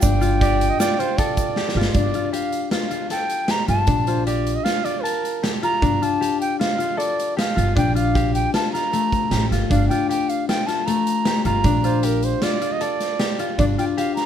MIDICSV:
0, 0, Header, 1, 6, 480
1, 0, Start_track
1, 0, Key_signature, -2, "minor"
1, 0, Tempo, 387597
1, 27, Time_signature, 5, 2, 24, 8
1, 17656, End_track
2, 0, Start_track
2, 0, Title_t, "Flute"
2, 0, Program_c, 0, 73
2, 5, Note_on_c, 0, 79, 86
2, 1876, Note_off_c, 0, 79, 0
2, 2409, Note_on_c, 0, 74, 72
2, 2856, Note_off_c, 0, 74, 0
2, 2895, Note_on_c, 0, 77, 75
2, 3339, Note_off_c, 0, 77, 0
2, 3373, Note_on_c, 0, 77, 76
2, 3817, Note_off_c, 0, 77, 0
2, 3853, Note_on_c, 0, 79, 85
2, 4344, Note_on_c, 0, 82, 96
2, 4363, Note_off_c, 0, 79, 0
2, 4558, Note_off_c, 0, 82, 0
2, 4566, Note_on_c, 0, 81, 82
2, 5237, Note_off_c, 0, 81, 0
2, 6983, Note_on_c, 0, 82, 97
2, 7465, Note_on_c, 0, 81, 88
2, 7484, Note_off_c, 0, 82, 0
2, 7929, Note_off_c, 0, 81, 0
2, 7936, Note_on_c, 0, 79, 86
2, 8157, Note_off_c, 0, 79, 0
2, 8174, Note_on_c, 0, 77, 81
2, 8645, Note_on_c, 0, 74, 84
2, 8663, Note_off_c, 0, 77, 0
2, 9129, Note_off_c, 0, 74, 0
2, 9145, Note_on_c, 0, 77, 81
2, 9587, Note_off_c, 0, 77, 0
2, 9628, Note_on_c, 0, 79, 86
2, 9845, Note_off_c, 0, 79, 0
2, 9859, Note_on_c, 0, 77, 76
2, 10304, Note_off_c, 0, 77, 0
2, 10336, Note_on_c, 0, 79, 78
2, 10560, Note_off_c, 0, 79, 0
2, 10582, Note_on_c, 0, 81, 76
2, 10796, Note_off_c, 0, 81, 0
2, 10803, Note_on_c, 0, 82, 90
2, 11723, Note_off_c, 0, 82, 0
2, 12030, Note_on_c, 0, 77, 77
2, 12239, Note_off_c, 0, 77, 0
2, 12246, Note_on_c, 0, 79, 71
2, 12477, Note_off_c, 0, 79, 0
2, 12508, Note_on_c, 0, 79, 80
2, 12745, Note_on_c, 0, 77, 78
2, 12764, Note_off_c, 0, 79, 0
2, 12981, Note_off_c, 0, 77, 0
2, 12988, Note_on_c, 0, 79, 75
2, 13209, Note_on_c, 0, 81, 80
2, 13227, Note_off_c, 0, 79, 0
2, 13447, Note_on_c, 0, 82, 86
2, 13466, Note_off_c, 0, 81, 0
2, 14176, Note_off_c, 0, 82, 0
2, 14183, Note_on_c, 0, 82, 79
2, 14855, Note_off_c, 0, 82, 0
2, 16822, Note_on_c, 0, 74, 74
2, 16896, Note_off_c, 0, 74, 0
2, 17074, Note_on_c, 0, 79, 77
2, 17148, Note_off_c, 0, 79, 0
2, 17314, Note_on_c, 0, 77, 79
2, 17525, Note_off_c, 0, 77, 0
2, 17533, Note_on_c, 0, 82, 86
2, 17656, Note_off_c, 0, 82, 0
2, 17656, End_track
3, 0, Start_track
3, 0, Title_t, "Flugelhorn"
3, 0, Program_c, 1, 56
3, 511, Note_on_c, 1, 74, 97
3, 867, Note_on_c, 1, 75, 89
3, 886, Note_off_c, 1, 74, 0
3, 984, Note_off_c, 1, 75, 0
3, 998, Note_on_c, 1, 74, 93
3, 1230, Note_on_c, 1, 72, 83
3, 1248, Note_off_c, 1, 74, 0
3, 1459, Note_on_c, 1, 74, 84
3, 1477, Note_off_c, 1, 72, 0
3, 2414, Note_off_c, 1, 74, 0
3, 5044, Note_on_c, 1, 72, 66
3, 5269, Note_off_c, 1, 72, 0
3, 5283, Note_on_c, 1, 74, 80
3, 5642, Note_on_c, 1, 75, 79
3, 5660, Note_off_c, 1, 74, 0
3, 5747, Note_on_c, 1, 77, 84
3, 5765, Note_off_c, 1, 75, 0
3, 6001, Note_on_c, 1, 74, 79
3, 6019, Note_off_c, 1, 77, 0
3, 6222, Note_on_c, 1, 70, 70
3, 6240, Note_off_c, 1, 74, 0
3, 6836, Note_off_c, 1, 70, 0
3, 14667, Note_on_c, 1, 72, 73
3, 14918, Note_on_c, 1, 70, 74
3, 14936, Note_off_c, 1, 72, 0
3, 15162, Note_on_c, 1, 72, 81
3, 15181, Note_off_c, 1, 70, 0
3, 15401, Note_on_c, 1, 74, 88
3, 15419, Note_off_c, 1, 72, 0
3, 15755, Note_on_c, 1, 75, 82
3, 15773, Note_off_c, 1, 74, 0
3, 15880, Note_on_c, 1, 74, 84
3, 15898, Note_off_c, 1, 75, 0
3, 16714, Note_off_c, 1, 74, 0
3, 17656, End_track
4, 0, Start_track
4, 0, Title_t, "Harp"
4, 0, Program_c, 2, 46
4, 0, Note_on_c, 2, 65, 69
4, 0, Note_on_c, 2, 67, 82
4, 0, Note_on_c, 2, 69, 75
4, 27, Note_on_c, 2, 62, 85
4, 256, Note_off_c, 2, 65, 0
4, 261, Note_on_c, 2, 65, 78
4, 501, Note_off_c, 2, 67, 0
4, 506, Note_on_c, 2, 67, 75
4, 982, Note_off_c, 2, 65, 0
4, 987, Note_on_c, 2, 65, 67
4, 1228, Note_off_c, 2, 65, 0
4, 1233, Note_on_c, 2, 65, 65
4, 1466, Note_off_c, 2, 69, 0
4, 1471, Note_on_c, 2, 69, 79
4, 1940, Note_off_c, 2, 67, 0
4, 1945, Note_on_c, 2, 67, 76
4, 2183, Note_off_c, 2, 65, 0
4, 2188, Note_on_c, 2, 65, 70
4, 2419, Note_off_c, 2, 62, 0
4, 2424, Note_on_c, 2, 62, 73
4, 2656, Note_off_c, 2, 65, 0
4, 2661, Note_on_c, 2, 65, 64
4, 2878, Note_off_c, 2, 67, 0
4, 2883, Note_on_c, 2, 67, 66
4, 3362, Note_off_c, 2, 65, 0
4, 3367, Note_on_c, 2, 65, 69
4, 3596, Note_off_c, 2, 65, 0
4, 3601, Note_on_c, 2, 65, 57
4, 3843, Note_off_c, 2, 69, 0
4, 3848, Note_on_c, 2, 69, 68
4, 4311, Note_off_c, 2, 67, 0
4, 4316, Note_on_c, 2, 67, 69
4, 4555, Note_off_c, 2, 65, 0
4, 4560, Note_on_c, 2, 65, 63
4, 4790, Note_off_c, 2, 62, 0
4, 4795, Note_on_c, 2, 62, 75
4, 5043, Note_off_c, 2, 65, 0
4, 5048, Note_on_c, 2, 65, 69
4, 5279, Note_off_c, 2, 67, 0
4, 5284, Note_on_c, 2, 67, 68
4, 5750, Note_off_c, 2, 65, 0
4, 5755, Note_on_c, 2, 65, 69
4, 6002, Note_off_c, 2, 65, 0
4, 6007, Note_on_c, 2, 65, 65
4, 6235, Note_on_c, 2, 81, 72
4, 6568, Note_off_c, 2, 69, 0
4, 6718, Note_off_c, 2, 67, 0
4, 6723, Note_on_c, 2, 67, 74
4, 6962, Note_off_c, 2, 65, 0
4, 6967, Note_on_c, 2, 65, 72
4, 7204, Note_off_c, 2, 62, 0
4, 7209, Note_on_c, 2, 62, 84
4, 7451, Note_off_c, 2, 65, 0
4, 7456, Note_on_c, 2, 65, 67
4, 7683, Note_off_c, 2, 67, 0
4, 7688, Note_on_c, 2, 67, 75
4, 8030, Note_off_c, 2, 81, 0
4, 8161, Note_off_c, 2, 65, 0
4, 8166, Note_on_c, 2, 65, 63
4, 8395, Note_off_c, 2, 65, 0
4, 8400, Note_on_c, 2, 65, 62
4, 8633, Note_on_c, 2, 69, 70
4, 9118, Note_off_c, 2, 67, 0
4, 9123, Note_on_c, 2, 67, 73
4, 9358, Note_off_c, 2, 65, 0
4, 9363, Note_on_c, 2, 65, 66
4, 9600, Note_off_c, 2, 62, 0
4, 9605, Note_on_c, 2, 62, 81
4, 9842, Note_off_c, 2, 65, 0
4, 9847, Note_on_c, 2, 65, 68
4, 10087, Note_off_c, 2, 67, 0
4, 10092, Note_on_c, 2, 67, 74
4, 10571, Note_off_c, 2, 65, 0
4, 10576, Note_on_c, 2, 65, 67
4, 10819, Note_off_c, 2, 65, 0
4, 10824, Note_on_c, 2, 65, 58
4, 11055, Note_on_c, 2, 57, 65
4, 11353, Note_off_c, 2, 69, 0
4, 11535, Note_off_c, 2, 67, 0
4, 11540, Note_on_c, 2, 67, 68
4, 11783, Note_off_c, 2, 65, 0
4, 11788, Note_on_c, 2, 65, 67
4, 12016, Note_off_c, 2, 62, 0
4, 12021, Note_on_c, 2, 62, 80
4, 12263, Note_off_c, 2, 65, 0
4, 12268, Note_on_c, 2, 65, 66
4, 12494, Note_off_c, 2, 67, 0
4, 12499, Note_on_c, 2, 67, 67
4, 12984, Note_off_c, 2, 65, 0
4, 12988, Note_on_c, 2, 65, 64
4, 13223, Note_off_c, 2, 65, 0
4, 13228, Note_on_c, 2, 65, 59
4, 13456, Note_off_c, 2, 57, 0
4, 13461, Note_on_c, 2, 57, 70
4, 13950, Note_off_c, 2, 67, 0
4, 13955, Note_on_c, 2, 67, 76
4, 14181, Note_off_c, 2, 65, 0
4, 14185, Note_on_c, 2, 65, 66
4, 14423, Note_off_c, 2, 62, 0
4, 14428, Note_on_c, 2, 62, 81
4, 14659, Note_off_c, 2, 65, 0
4, 14664, Note_on_c, 2, 65, 68
4, 14895, Note_off_c, 2, 67, 0
4, 14900, Note_on_c, 2, 67, 71
4, 15382, Note_off_c, 2, 65, 0
4, 15387, Note_on_c, 2, 65, 63
4, 15617, Note_off_c, 2, 65, 0
4, 15622, Note_on_c, 2, 65, 59
4, 15860, Note_on_c, 2, 69, 69
4, 16338, Note_off_c, 2, 67, 0
4, 16343, Note_on_c, 2, 67, 73
4, 16581, Note_off_c, 2, 65, 0
4, 16586, Note_on_c, 2, 65, 71
4, 16825, Note_off_c, 2, 62, 0
4, 16830, Note_on_c, 2, 62, 80
4, 17064, Note_off_c, 2, 65, 0
4, 17069, Note_on_c, 2, 65, 74
4, 17301, Note_off_c, 2, 67, 0
4, 17306, Note_on_c, 2, 67, 70
4, 17583, Note_off_c, 2, 57, 0
4, 17656, Note_off_c, 2, 62, 0
4, 17656, Note_off_c, 2, 65, 0
4, 17656, Note_off_c, 2, 67, 0
4, 17656, Note_off_c, 2, 69, 0
4, 17656, End_track
5, 0, Start_track
5, 0, Title_t, "Upright bass"
5, 0, Program_c, 3, 32
5, 33, Note_on_c, 3, 31, 78
5, 861, Note_off_c, 3, 31, 0
5, 2168, Note_on_c, 3, 31, 70
5, 2379, Note_off_c, 3, 31, 0
5, 2411, Note_on_c, 3, 31, 71
5, 2620, Note_off_c, 3, 31, 0
5, 4562, Note_on_c, 3, 31, 82
5, 4773, Note_off_c, 3, 31, 0
5, 4797, Note_on_c, 3, 34, 81
5, 5637, Note_off_c, 3, 34, 0
5, 7209, Note_on_c, 3, 31, 84
5, 7418, Note_off_c, 3, 31, 0
5, 9375, Note_on_c, 3, 31, 82
5, 9584, Note_off_c, 3, 31, 0
5, 9613, Note_on_c, 3, 34, 79
5, 10451, Note_off_c, 3, 34, 0
5, 11527, Note_on_c, 3, 33, 73
5, 11749, Note_off_c, 3, 33, 0
5, 11781, Note_on_c, 3, 31, 64
5, 11997, Note_off_c, 3, 31, 0
5, 12014, Note_on_c, 3, 31, 83
5, 12226, Note_off_c, 3, 31, 0
5, 14182, Note_on_c, 3, 31, 82
5, 14392, Note_off_c, 3, 31, 0
5, 14419, Note_on_c, 3, 34, 75
5, 15258, Note_off_c, 3, 34, 0
5, 16825, Note_on_c, 3, 31, 83
5, 17035, Note_off_c, 3, 31, 0
5, 17656, End_track
6, 0, Start_track
6, 0, Title_t, "Drums"
6, 22, Note_on_c, 9, 82, 61
6, 34, Note_on_c, 9, 36, 111
6, 43, Note_on_c, 9, 42, 79
6, 146, Note_off_c, 9, 82, 0
6, 158, Note_off_c, 9, 36, 0
6, 167, Note_off_c, 9, 42, 0
6, 266, Note_on_c, 9, 82, 19
6, 276, Note_on_c, 9, 42, 58
6, 390, Note_off_c, 9, 82, 0
6, 400, Note_off_c, 9, 42, 0
6, 512, Note_on_c, 9, 36, 91
6, 513, Note_on_c, 9, 42, 73
6, 636, Note_off_c, 9, 36, 0
6, 637, Note_off_c, 9, 42, 0
6, 756, Note_on_c, 9, 42, 57
6, 880, Note_off_c, 9, 42, 0
6, 991, Note_on_c, 9, 38, 95
6, 991, Note_on_c, 9, 42, 77
6, 996, Note_on_c, 9, 82, 58
6, 1115, Note_off_c, 9, 38, 0
6, 1115, Note_off_c, 9, 42, 0
6, 1120, Note_off_c, 9, 82, 0
6, 1236, Note_on_c, 9, 42, 55
6, 1360, Note_off_c, 9, 42, 0
6, 1467, Note_on_c, 9, 36, 94
6, 1468, Note_on_c, 9, 82, 18
6, 1470, Note_on_c, 9, 42, 75
6, 1591, Note_off_c, 9, 36, 0
6, 1592, Note_off_c, 9, 82, 0
6, 1594, Note_off_c, 9, 42, 0
6, 1696, Note_on_c, 9, 42, 60
6, 1701, Note_on_c, 9, 36, 76
6, 1706, Note_on_c, 9, 82, 41
6, 1820, Note_off_c, 9, 42, 0
6, 1825, Note_off_c, 9, 36, 0
6, 1830, Note_off_c, 9, 82, 0
6, 1934, Note_on_c, 9, 38, 57
6, 2058, Note_off_c, 9, 38, 0
6, 2088, Note_on_c, 9, 38, 62
6, 2212, Note_off_c, 9, 38, 0
6, 2247, Note_on_c, 9, 38, 97
6, 2370, Note_off_c, 9, 38, 0
6, 2404, Note_on_c, 9, 42, 76
6, 2411, Note_on_c, 9, 36, 95
6, 2528, Note_off_c, 9, 42, 0
6, 2535, Note_off_c, 9, 36, 0
6, 2648, Note_on_c, 9, 42, 51
6, 2771, Note_off_c, 9, 42, 0
6, 2891, Note_on_c, 9, 42, 68
6, 3015, Note_off_c, 9, 42, 0
6, 3125, Note_on_c, 9, 42, 47
6, 3249, Note_off_c, 9, 42, 0
6, 3360, Note_on_c, 9, 38, 89
6, 3360, Note_on_c, 9, 42, 64
6, 3484, Note_off_c, 9, 38, 0
6, 3484, Note_off_c, 9, 42, 0
6, 3601, Note_on_c, 9, 42, 51
6, 3724, Note_off_c, 9, 42, 0
6, 3840, Note_on_c, 9, 38, 29
6, 3840, Note_on_c, 9, 42, 63
6, 3963, Note_off_c, 9, 38, 0
6, 3963, Note_off_c, 9, 42, 0
6, 4080, Note_on_c, 9, 42, 52
6, 4204, Note_off_c, 9, 42, 0
6, 4311, Note_on_c, 9, 38, 92
6, 4311, Note_on_c, 9, 42, 72
6, 4435, Note_off_c, 9, 38, 0
6, 4435, Note_off_c, 9, 42, 0
6, 4558, Note_on_c, 9, 42, 56
6, 4682, Note_off_c, 9, 42, 0
6, 4790, Note_on_c, 9, 42, 77
6, 4800, Note_on_c, 9, 36, 105
6, 4914, Note_off_c, 9, 42, 0
6, 4924, Note_off_c, 9, 36, 0
6, 5039, Note_on_c, 9, 42, 56
6, 5163, Note_off_c, 9, 42, 0
6, 5284, Note_on_c, 9, 42, 70
6, 5408, Note_off_c, 9, 42, 0
6, 5529, Note_on_c, 9, 42, 55
6, 5653, Note_off_c, 9, 42, 0
6, 5767, Note_on_c, 9, 38, 86
6, 5767, Note_on_c, 9, 42, 75
6, 5891, Note_off_c, 9, 38, 0
6, 5891, Note_off_c, 9, 42, 0
6, 6010, Note_on_c, 9, 42, 55
6, 6134, Note_off_c, 9, 42, 0
6, 6256, Note_on_c, 9, 42, 68
6, 6380, Note_off_c, 9, 42, 0
6, 6499, Note_on_c, 9, 42, 56
6, 6623, Note_off_c, 9, 42, 0
6, 6732, Note_on_c, 9, 38, 97
6, 6732, Note_on_c, 9, 42, 69
6, 6856, Note_off_c, 9, 38, 0
6, 6856, Note_off_c, 9, 42, 0
6, 6973, Note_on_c, 9, 42, 56
6, 7097, Note_off_c, 9, 42, 0
6, 7212, Note_on_c, 9, 36, 95
6, 7218, Note_on_c, 9, 42, 72
6, 7336, Note_off_c, 9, 36, 0
6, 7342, Note_off_c, 9, 42, 0
6, 7462, Note_on_c, 9, 42, 55
6, 7586, Note_off_c, 9, 42, 0
6, 7706, Note_on_c, 9, 42, 68
6, 7830, Note_off_c, 9, 42, 0
6, 7943, Note_on_c, 9, 42, 52
6, 8067, Note_off_c, 9, 42, 0
6, 8185, Note_on_c, 9, 38, 97
6, 8185, Note_on_c, 9, 42, 65
6, 8309, Note_off_c, 9, 38, 0
6, 8309, Note_off_c, 9, 42, 0
6, 8420, Note_on_c, 9, 42, 50
6, 8544, Note_off_c, 9, 42, 0
6, 8664, Note_on_c, 9, 42, 65
6, 8788, Note_off_c, 9, 42, 0
6, 8909, Note_on_c, 9, 42, 49
6, 9033, Note_off_c, 9, 42, 0
6, 9147, Note_on_c, 9, 38, 100
6, 9147, Note_on_c, 9, 42, 75
6, 9271, Note_off_c, 9, 38, 0
6, 9271, Note_off_c, 9, 42, 0
6, 9385, Note_on_c, 9, 42, 58
6, 9509, Note_off_c, 9, 42, 0
6, 9617, Note_on_c, 9, 36, 100
6, 9620, Note_on_c, 9, 42, 75
6, 9741, Note_off_c, 9, 36, 0
6, 9743, Note_off_c, 9, 42, 0
6, 9861, Note_on_c, 9, 42, 59
6, 9984, Note_off_c, 9, 42, 0
6, 10098, Note_on_c, 9, 36, 87
6, 10107, Note_on_c, 9, 42, 76
6, 10222, Note_off_c, 9, 36, 0
6, 10230, Note_off_c, 9, 42, 0
6, 10338, Note_on_c, 9, 42, 55
6, 10462, Note_off_c, 9, 42, 0
6, 10575, Note_on_c, 9, 38, 93
6, 10575, Note_on_c, 9, 42, 72
6, 10698, Note_off_c, 9, 38, 0
6, 10698, Note_off_c, 9, 42, 0
6, 10832, Note_on_c, 9, 38, 30
6, 10832, Note_on_c, 9, 42, 53
6, 10955, Note_off_c, 9, 38, 0
6, 10955, Note_off_c, 9, 42, 0
6, 11061, Note_on_c, 9, 42, 67
6, 11185, Note_off_c, 9, 42, 0
6, 11300, Note_on_c, 9, 36, 68
6, 11306, Note_on_c, 9, 42, 51
6, 11424, Note_off_c, 9, 36, 0
6, 11429, Note_off_c, 9, 42, 0
6, 11534, Note_on_c, 9, 38, 89
6, 11534, Note_on_c, 9, 42, 69
6, 11658, Note_off_c, 9, 38, 0
6, 11658, Note_off_c, 9, 42, 0
6, 11792, Note_on_c, 9, 38, 30
6, 11792, Note_on_c, 9, 42, 50
6, 11916, Note_off_c, 9, 38, 0
6, 11916, Note_off_c, 9, 42, 0
6, 12022, Note_on_c, 9, 36, 93
6, 12023, Note_on_c, 9, 42, 73
6, 12146, Note_off_c, 9, 36, 0
6, 12147, Note_off_c, 9, 42, 0
6, 12271, Note_on_c, 9, 42, 55
6, 12395, Note_off_c, 9, 42, 0
6, 12514, Note_on_c, 9, 42, 65
6, 12638, Note_off_c, 9, 42, 0
6, 12748, Note_on_c, 9, 42, 49
6, 12872, Note_off_c, 9, 42, 0
6, 12991, Note_on_c, 9, 38, 90
6, 12991, Note_on_c, 9, 42, 71
6, 13115, Note_off_c, 9, 38, 0
6, 13115, Note_off_c, 9, 42, 0
6, 13230, Note_on_c, 9, 38, 29
6, 13230, Note_on_c, 9, 42, 51
6, 13354, Note_off_c, 9, 38, 0
6, 13354, Note_off_c, 9, 42, 0
6, 13467, Note_on_c, 9, 42, 67
6, 13591, Note_off_c, 9, 42, 0
6, 13704, Note_on_c, 9, 42, 58
6, 13828, Note_off_c, 9, 42, 0
6, 13937, Note_on_c, 9, 38, 92
6, 13937, Note_on_c, 9, 42, 74
6, 14061, Note_off_c, 9, 38, 0
6, 14061, Note_off_c, 9, 42, 0
6, 14177, Note_on_c, 9, 42, 57
6, 14301, Note_off_c, 9, 42, 0
6, 14414, Note_on_c, 9, 42, 81
6, 14420, Note_on_c, 9, 36, 95
6, 14538, Note_off_c, 9, 42, 0
6, 14544, Note_off_c, 9, 36, 0
6, 14659, Note_on_c, 9, 42, 55
6, 14783, Note_off_c, 9, 42, 0
6, 14897, Note_on_c, 9, 42, 69
6, 15021, Note_off_c, 9, 42, 0
6, 15138, Note_on_c, 9, 42, 49
6, 15262, Note_off_c, 9, 42, 0
6, 15377, Note_on_c, 9, 38, 92
6, 15377, Note_on_c, 9, 42, 67
6, 15501, Note_off_c, 9, 38, 0
6, 15501, Note_off_c, 9, 42, 0
6, 15622, Note_on_c, 9, 42, 53
6, 15745, Note_off_c, 9, 42, 0
6, 15859, Note_on_c, 9, 42, 62
6, 15983, Note_off_c, 9, 42, 0
6, 16104, Note_on_c, 9, 38, 30
6, 16104, Note_on_c, 9, 42, 55
6, 16227, Note_off_c, 9, 38, 0
6, 16227, Note_off_c, 9, 42, 0
6, 16341, Note_on_c, 9, 38, 93
6, 16341, Note_on_c, 9, 42, 69
6, 16465, Note_off_c, 9, 38, 0
6, 16465, Note_off_c, 9, 42, 0
6, 16584, Note_on_c, 9, 42, 55
6, 16707, Note_off_c, 9, 42, 0
6, 16825, Note_on_c, 9, 42, 77
6, 16828, Note_on_c, 9, 36, 93
6, 16948, Note_off_c, 9, 42, 0
6, 16952, Note_off_c, 9, 36, 0
6, 17076, Note_on_c, 9, 42, 54
6, 17200, Note_off_c, 9, 42, 0
6, 17312, Note_on_c, 9, 42, 70
6, 17435, Note_off_c, 9, 42, 0
6, 17548, Note_on_c, 9, 38, 31
6, 17548, Note_on_c, 9, 42, 52
6, 17656, Note_off_c, 9, 38, 0
6, 17656, Note_off_c, 9, 42, 0
6, 17656, End_track
0, 0, End_of_file